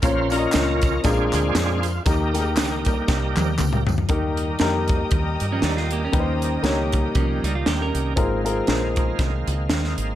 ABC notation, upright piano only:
X:1
M:4/4
L:1/16
Q:"Swing" 1/4=118
K:Ebmix
V:1 name="Upright piano"
[DFBd]2 [DFB=de]6 [=DFAB]6 z2 | [B,EGB]2 [B,EGAB]6 z8 | [B,EGB]3 z [B,EGB]6 z6 | [B,EG_c=c]3 z [B,EGd]6 z6 |
[CFAB]2 [CFAB]6 z8 |]
V:2 name="Upright piano" clef=bass
B,,6 z2 B,,6 z2 | E,6 z8 z2 | E,6 z8 z2 | E,6 z8 z2 |
A,,6 z8 z2 |]